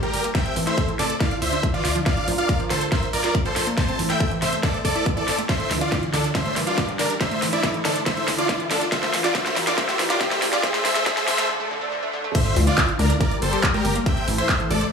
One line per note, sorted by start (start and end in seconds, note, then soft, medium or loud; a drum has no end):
0.00 0.34 G3 medium
0.00 0.07 G3 medium
0.00 0.34 G4 medium
0.00 0.23 G4 medium
0.00 0.34 A#4 medium
0.00 0.23 A#4 loud
0.00 0.34 D5 medium
0.00 closed hi-hat soft
0.00 riser medium
0.00 high conga medium
0.13 0.29 G1 medium
0.13 open hi-hat loud
0.24 0.27 A#3 medium
0.24 closed hi-hat medium
0.35 0.37 C3 loud
0.35 1.20 A3 medium
0.35 1.20 A4 medium
0.35 1.20 C5 medium
0.35 0.55 E5 medium
0.35 1.20 E5 medium
0.35 0.55 G5 loud
0.35 kick loud
0.35 snare medium
0.35 closed hi-hat medium
0.46 0.52 C4 medium
0.46 closed hi-hat soft
0.56 0.71 A1 medium
0.56 0.63 E3 medium
0.56 open hi-hat loud
0.67 0.73 E4 medium
0.67 0.88 C5 medium
0.67 0.88 E5 medium
0.67 snare soft
0.67 closed hi-hat medium
0.78 0.84 A4 medium
0.78 kick loud
0.78 closed hi-hat medium
0.88 0.93 E3 medium
0.88 closed hi-hat soft
0.99 1.14 A1 loud
0.99 1.05 C3 medium
0.99 1.13 A4 medium
0.99 1.13 D5 medium
0.99 snare medium
0.99 open hi-hat loud
0.99 high conga medium
1.10 closed hi-hat medium
1.20 2.05 D3 medium
1.20 3.75 D4 medium
1.20 1.23 E4 loud
1.20 2.06 E4 medium
1.20 3.75 F4 medium
1.20 1.34 D5 medium
1.20 1.34 F5 medium
1.20 kick loud
1.20 snare medium
1.20 closed hi-hat medium
1.31 closed hi-hat soft
1.42 1.57 D2 medium
1.42 1.63 C5 medium
1.42 1.63 E5 loud
1.42 open hi-hat loud
1.53 1.59 D4 medium
1.53 closed hi-hat medium
1.63 kick loud
1.63 closed hi-hat medium
1.74 1.78 E3 medium
1.74 1.95 F4 medium
1.74 1.95 D5 medium
1.74 closed hi-hat soft
1.85 2.00 D2 medium
1.85 snare medium
1.85 open hi-hat loud
1.96 1.98 F3 medium
1.96 closed hi-hat medium
2.06 2.09 D3 loud
2.06 3.76 A#4 medium
2.06 2.27 D5 medium
2.06 2.27 F5 loud
2.06 kick loud
2.06 snare medium
2.06 closed hi-hat soft
2.17 2.23 D4 medium
2.17 closed hi-hat soft
2.28 2.43 A#1 loud
2.28 2.34 F3 medium
2.28 open hi-hat loud
2.28 high conga medium
2.38 2.45 F4 medium
2.38 2.59 D5 medium
2.38 2.59 F5 medium
2.38 closed hi-hat soft
2.49 2.55 A#4 medium
2.49 kick loud
2.49 closed hi-hat medium
2.60 2.64 F3 medium
2.60 closed hi-hat soft
2.70 2.86 A#1 loud
2.70 2.77 D3 medium
2.70 2.84 A4 medium
2.70 2.84 C5 medium
2.70 snare medium
2.70 open hi-hat loud
2.70 high conga medium
2.81 closed hi-hat medium
2.92 2.95 A#4 loud
2.92 3.06 C5 medium
2.92 3.06 E5 medium
2.92 kick loud
2.92 snare medium
2.92 closed hi-hat medium
3.03 closed hi-hat soft
3.13 3.29 A#1 medium
3.13 3.34 A#4 medium
3.13 3.34 D5 loud
3.13 open hi-hat loud
3.24 3.30 F4 medium
3.24 snare medium
3.24 closed hi-hat medium
3.35 kick loud
3.35 closed hi-hat soft
3.45 3.50 F3 medium
3.45 3.66 A4 medium
3.45 3.66 C5 loud
3.45 closed hi-hat soft
3.45 high conga medium
3.56 3.71 A#1 medium
3.56 snare medium
3.56 open hi-hat loud
3.67 3.69 A#3 medium
3.67 closed hi-hat soft
3.77 3.80 C3 loud
3.77 5.47 A3 medium
3.77 5.47 A4 medium
3.77 3.98 C5 medium
3.77 5.47 C5 medium
3.77 5.47 E5 medium
3.77 3.98 A5 loud
3.77 kick loud
3.77 snare medium
3.77 closed hi-hat soft
3.88 3.95 C4 medium
3.88 closed hi-hat soft
3.99 4.14 A1 loud
3.99 4.05 E3 medium
3.99 open hi-hat loud
4.10 4.16 E4 medium
4.10 4.30 E5 medium
4.10 4.30 G5 medium
4.10 snare medium
4.10 closed hi-hat soft
4.20 4.27 A4 medium
4.20 kick loud
4.20 closed hi-hat soft
4.31 4.35 E3 medium
4.31 closed hi-hat soft
4.42 4.57 A1 loud
4.42 4.48 C3 medium
4.42 4.56 C5 medium
4.42 4.56 E5 medium
4.42 snare medium
4.42 open hi-hat loud
4.42 high conga medium
4.53 closed hi-hat soft
4.63 4.66 A4 loud
4.63 4.77 A4 medium
4.63 4.77 D5 medium
4.63 kick loud
4.63 snare medium
4.63 closed hi-hat medium
4.74 closed hi-hat soft
4.85 5.00 G1 medium
4.85 5.05 A4 medium
4.85 5.05 D5 loud
4.85 kick medium
4.85 open hi-hat loud
4.96 5.02 E4 medium
4.96 closed hi-hat soft
5.06 kick loud
5.06 closed hi-hat soft
5.17 5.21 E3 medium
5.17 5.38 A4 medium
5.17 5.38 D5 medium
5.17 closed hi-hat soft
5.28 5.43 A1 medium
5.28 snare medium
5.28 open hi-hat loud
5.38 5.41 A3 medium
5.38 closed hi-hat soft
5.49 6.34 D3 medium
5.49 5.52 D3 medium
5.49 6.34 D4 medium
5.49 6.34 E4 medium
5.49 6.34 F4 medium
5.49 5.70 C5 medium
5.49 5.70 E5 medium
5.49 kick loud
5.49 snare medium
5.49 closed hi-hat soft
5.60 5.66 A3 medium
5.60 closed hi-hat soft
5.71 5.86 D2 loud
5.71 5.77 E3 medium
5.71 snare medium
5.71 open hi-hat loud
5.71 high conga medium
5.81 5.88 D4 medium
5.81 6.02 F4 medium
5.81 6.02 D5 medium
5.81 closed hi-hat soft
5.92 5.98 E4 medium
5.92 kick loud
5.92 snare medium
5.92 closed hi-hat medium
6.03 6.07 E3 medium
6.03 closed hi-hat soft
6.13 6.29 D2 loud
6.13 6.20 D3 medium
6.13 6.27 D4 medium
6.13 6.27 A4 medium
6.13 snare medium
6.13 open hi-hat loud
6.13 high conga medium
6.24 closed hi-hat medium
6.35 6.37 D3 medium
6.35 7.20 G3 medium
6.35 7.20 G4 medium
6.35 7.20 A#4 medium
6.35 6.55 C5 medium
6.35 7.20 D5 medium
6.35 6.55 E5 medium
6.35 kick loud
6.35 snare medium
6.35 closed hi-hat soft
6.46 6.52 A3 medium
6.46 closed hi-hat soft
6.56 6.71 G1 medium
6.56 6.63 E3 medium
6.56 snare medium
6.56 open hi-hat loud
6.67 6.73 D4 medium
6.67 6.88 F4 medium
6.67 6.88 D5 medium
6.67 closed hi-hat soft
6.78 6.84 E4 medium
6.78 kick loud
6.78 snare medium
6.78 closed hi-hat soft
6.88 6.93 E3 medium
6.88 closed hi-hat soft
6.88 high conga medium
6.99 7.14 G1 medium
6.99 7.05 D3 medium
6.99 7.13 D4 medium
6.99 7.13 A#4 medium
6.99 snare medium
6.99 open hi-hat loud
7.10 closed hi-hat soft
7.21 7.23 D3 medium
7.21 8.06 A3 medium
7.21 8.06 A4 medium
7.21 7.41 C5 medium
7.21 8.05 C5 medium
7.21 7.41 E5 medium
7.21 8.06 E5 medium
7.21 kick loud
7.21 snare medium
7.21 closed hi-hat soft
7.31 7.38 A3 medium
7.31 closed hi-hat soft
7.42 7.57 A1 loud
7.42 7.48 E3 medium
7.42 snare medium
7.42 open hi-hat loud
7.53 7.59 D4 medium
7.53 7.73 E4 medium
7.53 7.73 D5 medium
7.53 closed hi-hat medium
7.63 7.70 E4 medium
7.63 kick loud
7.63 snare medium
7.63 closed hi-hat medium
7.74 7.78 E3 medium
7.74 closed hi-hat soft
7.85 8.00 A1 loud
7.85 7.91 D3 medium
7.85 7.99 D4 medium
7.85 7.99 A4 medium
7.85 snare medium
7.85 open hi-hat loud
7.85 high conga medium
7.96 closed hi-hat medium
8.06 8.09 D3 loud
8.06 8.91 D3 medium
8.06 10.61 D4 medium
8.06 8.91 E4 medium
8.06 10.61 F4 medium
8.06 8.27 C5 medium
8.06 8.27 E5 loud
8.06 kick loud
8.06 snare medium
8.06 closed hi-hat medium
8.17 8.23 A3 medium
8.17 closed hi-hat soft
8.28 8.43 D2 medium
8.28 8.34 E3 medium
8.28 snare medium
8.28 open hi-hat loud
8.38 8.45 D4 medium
8.38 8.59 F4 medium
8.38 8.59 D5 medium
8.38 closed hi-hat medium
8.49 8.55 E4 medium
8.49 kick loud
8.49 snare medium
8.49 closed hi-hat medium
8.60 8.64 E3 medium
8.60 closed hi-hat soft
8.70 8.86 D2 medium
8.70 8.77 D3 medium
8.70 8.84 D4 medium
8.70 8.84 A4 medium
8.70 snare medium
8.70 open hi-hat loud
8.81 closed hi-hat medium
8.92 8.95 D3 loud
8.92 10.62 A#4 medium
8.92 9.13 C5 medium
8.92 9.13 E5 loud
8.92 kick loud
8.92 snare medium
8.92 closed hi-hat medium
9.03 9.09 A3 medium
9.03 snare medium
9.03 closed hi-hat soft
9.13 9.29 A#1 loud
9.13 9.20 E3 medium
9.13 snare medium
9.13 open hi-hat loud
9.13 high conga medium
9.24 9.30 D4 medium
9.24 9.33 F4 medium
9.24 9.33 D5 medium
9.24 snare medium
9.24 closed hi-hat medium
9.35 9.37 D3 loud
9.35 9.56 C5 medium
9.35 9.56 E5 loud
9.35 kick loud
9.35 snare loud
9.35 closed hi-hat medium
9.46 9.52 A3 medium
9.46 snare medium
9.46 closed hi-hat soft
9.56 9.71 A#1 loud
9.56 9.63 E3 medium
9.56 snare medium
9.56 open hi-hat loud
9.56 high conga medium
9.67 9.73 D4 medium
9.67 9.76 F4 medium
9.67 9.76 D5 loud
9.67 snare medium
9.67 closed hi-hat medium
9.78 9.80 D3 loud
9.78 9.98 C5 medium
9.78 9.98 E5 loud
9.78 kick loud
9.78 snare loud
9.78 closed hi-hat medium
9.88 9.95 A3 medium
9.88 snare medium
9.88 closed hi-hat soft
9.99 10.14 A#1 medium
9.99 10.05 E3 medium
9.99 snare loud
9.99 open hi-hat loud
10.10 10.16 D4 medium
10.10 10.19 F4 medium
10.10 10.19 D5 medium
10.10 snare medium
10.10 closed hi-hat medium
10.21 10.23 D3 loud
10.21 10.41 C5 medium
10.21 10.41 E5 loud
10.21 kick loud
10.21 snare medium
10.21 closed hi-hat medium
10.31 10.38 A3 medium
10.31 snare medium
10.31 closed hi-hat soft
10.31 high conga medium
10.42 10.57 A#1 medium
10.42 10.48 E3 medium
10.42 snare loud
10.42 open hi-hat loud
10.53 10.59 D4 medium
10.53 10.62 F4 medium
10.53 10.62 D5 medium
10.53 snare medium
10.53 closed hi-hat medium
10.63 10.66 D3 loud
10.63 11.48 A3 medium
10.63 11.48 A4 medium
10.63 11.48 C5 medium
10.63 10.83 C5 medium
10.63 11.48 E5 medium
10.63 10.83 E5 loud
10.63 kick loud
10.63 snare loud
10.63 closed hi-hat medium
10.74 10.81 A3 medium
10.74 snare medium
10.74 closed hi-hat soft
10.85 11.00 A1 loud
10.85 10.87 D3 loud
10.85 11.05 C5 medium
10.85 11.05 E5 loud
10.85 snare loud
10.85 open hi-hat loud
10.85 high conga medium
10.95 11.02 A3 medium
10.95 snare medium
10.95 closed hi-hat medium
11.06 11.09 D3 loud
11.06 11.26 C5 medium
11.06 11.26 E5 loud
11.06 kick loud
11.06 snare loud
11.06 closed hi-hat medium
11.17 11.23 A3 medium
11.17 snare medium
11.17 closed hi-hat soft
11.28 11.43 A1 loud
11.28 11.30 D3 loud
11.28 11.47 C5 medium
11.28 11.47 E5 loud
11.28 snare loud
11.28 open hi-hat loud
11.28 high conga medium
11.38 11.45 A3 medium
11.38 snare loud
11.38 closed hi-hat medium
11.49 11.52 D3 loud
11.49 swell medium
11.60 11.66 A3 medium
11.71 11.73 D3 loud
11.81 11.88 A3 medium
11.92 11.95 D3 loud
12.03 12.09 A3 medium
12.13 12.16 D3 loud
12.24 12.30 A3 medium
12.35 13.20 D3 medium
12.35 12.37 D3 loud
12.35 13.20 D4 medium
12.35 13.20 E4 medium
12.35 13.20 F4 medium
12.35 12.56 C5 medium
12.35 12.56 E5 loud
12.35 kick loud
12.35 closed hi-hat medium
12.35 crash loud
12.35 sub drop medium
12.46 12.52 A3 medium
12.46 closed hi-hat soft
12.56 12.71 D2 loud
12.56 12.63 E3 medium
12.56 open hi-hat loud
12.56 high conga medium
12.67 12.73 D4 medium
12.67 12.88 F4 medium
12.67 12.88 D5 medium
12.67 closed hi-hat medium
12.78 12.84 E4 medium
12.78 kick loud
12.78 clap loud
12.78 closed hi-hat medium
12.88 12.93 E3 medium
12.88 closed hi-hat soft
12.99 13.14 D2 loud
12.99 13.05 D3 medium
12.99 13.13 D4 medium
12.99 13.13 A#4 medium
12.99 open hi-hat loud
12.99 high conga medium
13.10 closed hi-hat medium
13.21 14.05 G3 medium
13.21 14.05 G4 medium
13.21 13.23 A#4 loud
13.21 13.34 A#4 medium
13.21 14.05 A#4 medium
13.21 13.34 D5 medium
13.21 14.05 D5 medium
13.21 kick loud
13.21 closed hi-hat medium
13.31 closed hi-hat soft
13.42 13.57 G1 medium
13.42 13.63 A4 medium
13.42 13.63 C5 loud
13.42 open hi-hat loud
13.53 13.59 G4 medium
13.53 closed hi-hat medium
13.63 kick loud
13.63 clap loud
13.63 closed hi-hat medium
13.74 13.78 G3 medium
13.74 13.95 G4 medium
13.74 13.95 A#4 loud
13.74 closed hi-hat soft
13.74 high conga medium
13.85 14.00 G1 medium
13.85 open hi-hat loud
13.96 13.98 A#3 medium
13.96 closed hi-hat medium
14.06 14.09 C3 loud
14.06 14.91 A3 medium
14.06 14.91 A4 medium
14.06 14.91 C5 medium
14.06 14.91 E5 medium
14.06 14.27 E5 medium
14.06 14.27 G5 loud
14.06 kick loud
14.06 closed hi-hat medium
14.17 14.23 C4 medium
14.17 closed hi-hat soft
14.28 14.43 A1 loud
14.28 14.34 E3 medium
14.28 open hi-hat loud
14.38 14.45 E4 medium
14.38 14.59 C5 medium
14.38 14.59 E5 medium
14.38 closed hi-hat medium
14.49 14.55 A4 medium
14.49 kick loud
14.49 clap loud
14.49 closed hi-hat medium
14.60 14.64 E3 medium
14.60 closed hi-hat soft
14.70 14.86 A1 loud
14.70 14.77 C3 medium
14.70 14.84 A4 medium
14.70 14.84 D5 medium
14.70 open hi-hat loud
14.70 high conga medium
14.81 closed hi-hat medium